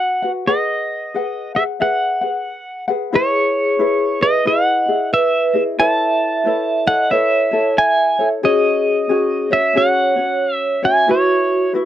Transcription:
Already playing: F#4 B4 F#5
0.22 F#4 B4 F#5
0.47 G#4 B4 D#5 F#5
1.14 G#4 B4 F#5
1.55 G#4 B4 E5 F#5
1.80 G#4 B4 E5 F#5
2.21 G#4 B4 F#5
2.88 G#4 B4 F#5
3.13 E4 G#4 B4 C#5 D#5
3.79 E4 G#4 B4 D#5
4.21 E4 G#4 B4 D#5
4.45 E4 G#4 B4 D#5 F#5
4.88 E4 G#4
5.13 B4 E5
5.54 E4 G#4 D#5
5.78 E4 A4 B4 C#5 E5 A5
6.45 E4 A4 B4 C#5
6.86 E4 A4 C#5 D#5 F#5
7.11 E4 A4 B4 C#5 E5
7.51 E4 A4 C#5
7.78 E5 G#5
8.19 E4 A4 C#5
8.43 C#4 F#4 G#4 C#5 D#5
9.09 C#4 F#4 G#4 C#5
9.51 C#4 F#4 C#5 E5
9.75 C#4 F#4 G#4 C#5 F#5
10.16 C#4 F#4 C#5
10.54 E5
10.83 C#4 F#4 C#5 E5 G#5
11.08 E4 F#4 B4 C#5 E5
11.73 E4 F#4 B4 E5

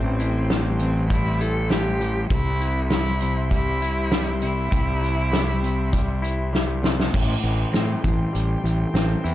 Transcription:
Already playing: A1 A2 E3 G3 C4 E4 A4 G5 C6
0.20 E4, closed hi-hat
0.50 G3, snare, closed hi-hat
0.79 E3 C4, closed hi-hat
1.10 G3 E4, kick, closed hi-hat
1.40 E4 A4, closed hi-hat
1.70 G3 G4, snare, closed hi-hat
2.00 E3, closed hi-hat
2.29 C2 C3 E4 G4 E5, kick, closed hi-hat
2.61 E4, closed hi-hat
2.90 G3 E4, snare, closed hi-hat
3.21 C3, closed hi-hat
3.51 G3 E4, kick, closed hi-hat
3.82 E4, closed hi-hat
4.12 G3, snare, closed hi-hat
4.42 C3 E4, closed hi-hat
4.72 C2 C3, kick, closed hi-hat
5.02 E4, closed hi-hat
5.32 G3, snare, closed hi-hat
5.62 C3, closed hi-hat
5.93 G3, kick, closed hi-hat
6.22 E4, closed hi-hat
6.53 G3, snare
6.83 C3, snare
7.00 snare
7.13 A1 A2 A4 G5 C6, kick, crash
7.43 A1 E3, closed hi-hat
7.73 A2 C4, snare, closed hi-hat
8.03 A1 E3, kick, closed hi-hat
8.33 A1 G3, closed hi-hat
8.64 A1 E3, closed hi-hat
8.94 A1 C4, snare, closed hi-hat
9.24 E2 E4, closed hi-hat

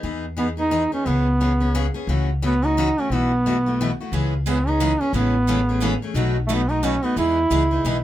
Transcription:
0.03 E2 E3 B3 D#4 G#4
0.37 E3 B3 D#4 G#4
0.57 B3 D#4 G#4
0.71 E3 B3 D#4 G#4
0.92 B3 C#4 D#4 G#4
1.06 C#2 C#3 E3 B3 C#4 G#4
1.41 C#3 E3 B3 C#4 G#4
1.60 B3 C#4 G#4
1.75 C#3 E3 B3 C#4 G#4
1.94 B3 C#4 G#4
2.07 C#2 C#3 E3 A3 C#4 F#4
2.42 C#3 E3 A3 B3 C#4 F#4
2.62 A3 C#4 D#4 F#4
2.77 C#3 E3 A3 C#4 F#4
2.98 A3 C#4 F#4
3.10 B1 B2 E3 A3 E4 F#4
3.14 B3
3.46 B2 E3 A3 E4 F#4
3.66 A3 E4 F#4
3.81 B2 E3 A3 E4 F#4
4.00 A3 E4 F#4
4.12 C#2 C#3 E3 G#3 B3 C#4 E4 G#4
4.46 C#3 E3 G#3 B3 C#4 E4 G#4
4.67 B3 C#4 D#4 G#4
4.80 C#3 E3 G#3 B3 C#4 E4 G#4
5.00 B3 C#4 G#4
5.13 A1 C#3 E3 G#3 A3 B3 C#4 E4 G#4 A4
5.48 C#3 E3 G#3 A3 C#4 E4 G#4 A4
5.69 A3 C#4 G#4
5.81 C#3 E3 G#3 A3 C#4 E4 G#4 A4
6.02 A3 C#4 G#4
6.14 B1 B2 F#3 A3 D#4 F#4 B4
6.47 B2 F#3 A3 B3 D#4 F#4 B4
6.69 A3 D#4 F#4
6.83 B2 F#3 A3 C#4 D#4 F#4 B4
7.03 A3 B3 D#4 F#4
7.16 E2 E3 G#3 B3 D#4 E4 G#4
7.50 C#2 E3 G#3 B3 D#4 G#4
7.71 B3 D#4 G#4
7.84 B1 E3 G#3 B3 D#4 G#4

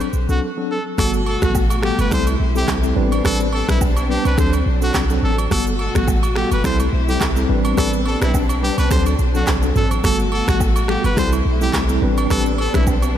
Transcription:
0.00 high agogo, shaker
0.13 B1, shaker
0.29 C2 F#3 C4 D4 F#4 A4, shaker
0.57 F#3 C4 D4 A4
0.71 A4
0.98 G1 B2 G3 A3 B3 F#4 A4, finger snap, kick, cross-stick, high agogo, shaker
1.14 shaker
1.26 A4, high agogo
1.42 A1 G3 B3 F#4 A4, finger snap, kick, cross-stick, shaker
1.55 kick, low woodblock, shaker
1.70 high agogo, shaker
1.83 G3 B3 F#4 G4 A4, finger snap, cross-stick
1.99 G1 B4, high agogo, shaker
2.11 C2 G3 C4 E4 A4 C5, finger snap, kick, cross-stick, shaker
2.27 high agogo, shaker
2.40 B1
2.55 G3 C4 E4 G4 A4, shaker
2.68 C2, finger snap, kick, cross-stick, clap, high agogo, low woodblock, shaker
2.83 G3 C4 E4 A4, shaker
2.96 A1 G3 B3 C4 D4 B4
3.12 high agogo, shaker
3.24 A1 G3 C4 D4 A4 B4, finger snap, kick, cross-stick, high agogo, shaker
3.40 shaker
3.53 A4, high agogo
3.68 B1 G3 C4 D4 E4 B4, finger snap, kick, cross-stick, shaker
3.81 kick, low woodblock, shaker
3.97 high agogo, shaker
4.09 G3 C4 D4 G4 B4
4.25 C2 B4, high agogo, shaker
4.37 D2 F#3 C4 D4 A4 C5, finger snap, kick, cross-stick, shaker
4.53 high agogo, shaker
4.66 B1
4.82 F#3 C4 D4 F#4 A4, shaker
4.94 C2, finger snap, kick, cross-stick, clap, high agogo, low woodblock, shaker
5.10 F#3 C4 D4 A4, shaker
5.23 A1 A4
5.38 high agogo, shaker
5.51 G1 B2 G3 A3 B3 F#4 A4, finger snap, kick, cross-stick, high agogo, shaker
5.67 shaker
5.79 A4, high agogo
5.95 A1 G3 B3 F#4 A4, finger snap, kick, cross-stick, shaker
6.08 kick, low woodblock, shaker
6.23 high agogo, shaker
6.36 G3 B3 F#4 G4 A4, finger snap, cross-stick
6.52 G1 B4, high agogo, shaker
6.64 C2 G3 C4 E4 A4 C5, finger snap, kick, cross-stick, shaker
6.80 high agogo, shaker
6.93 B1
7.08 G3 C4 E4 G4 A4, shaker
7.21 C2, finger snap, kick, cross-stick, clap, high agogo, low woodblock, shaker
7.36 G3 C4 E4 A4, shaker
7.49 A1 G3 B3 C4 D4 B4
7.65 high agogo, shaker
7.77 A1 G3 C4 D4 A4 B4, finger snap, kick, cross-stick, high agogo, shaker
7.93 shaker
8.06 A4, high agogo
8.21 B1 G3 C4 D4 E4 B4, finger snap, cross-stick, shaker
8.34 kick, low woodblock, shaker
8.49 high agogo, shaker
8.62 G3 C4 D4 G4 B4
8.78 C2 B4, high agogo, shaker
8.90 D2 F#3 C4 D4 A4 C5, finger snap, kick, cross-stick, shaker
9.06 high agogo, shaker
9.19 B1, shaker
9.34 F#3 C4 D4 F#4 A4, shaker
9.47 C2, finger snap, kick, cross-stick, clap, high agogo, low woodblock, shaker
9.63 F#3 C4 D4 A4, shaker
9.76 A1 A4, mid tom, shaker
9.91 high agogo, shaker
10.04 G1 B2 G3 A3 B3 F#4 A4, finger snap, kick, cross-stick, high agogo, shaker
10.19 shaker
10.32 A4, high agogo
10.48 A1 G3 B3 F#4 A4, finger snap, kick, cross-stick, shaker
10.60 kick, low woodblock, shaker
10.76 high agogo, shaker
10.88 G3 B3 F#4 G4 A4, finger snap, cross-stick
11.04 G1 B4, high agogo, shaker
11.17 C2 G3 A3 C4 E4 A4 C5, finger snap, kick, cross-stick, shaker
11.32 high agogo, shaker
11.45 B1
11.61 G3 C4 E4 G4 A4, shaker
11.74 C2, finger snap, kick, cross-stick, clap, high agogo, low woodblock, shaker
11.89 G3 C4 E4 A4, shaker
12.02 A1 G3 B3 C4 D4 B4
12.18 high agogo, shaker
12.30 A1 G3 C4 D4 A4 B4, finger snap, kick, cross-stick, high agogo, shaker
12.46 shaker
12.58 A4, high agogo
12.74 B1 G3 C4 D4 E4 B4, finger snap, kick, cross-stick, shaker
12.87 kick, low woodblock, shaker
13.02 high agogo, shaker

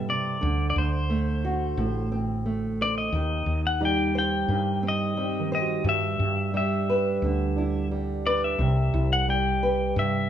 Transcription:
Already playing: G2 G3 E4 A4 B4 E5
0.08 C3 D5
0.41 D2 D3
0.70 D5
0.76 D2 C5
1.10 A3
1.45 F#4
1.77 A1 A2
2.12 C4
2.46 A3
2.81 C5 D5
2.98 D#5
3.12 D#2 D#3
3.46 D#2
3.67 F#5
3.81 G3 D#4
3.85 G5
4.15 C5 G5
4.48 G2 D#3
4.83 C4
4.88 D#5
5.17 G3 C4
5.40 D#3
5.52 C5 D#5
5.61 F#4
5.84 G2
5.89 E5
6.19 G2
6.54 G3 E5
6.89 B4
7.22 D2 D3
7.56 D4 E4
7.91 G3
8.26 B4 D5
8.44 E5
8.59 C2 C3
8.94 C2 E4
9.13 F#5
9.28 G3 G5
9.63 B4
9.96 G2 G3 E5

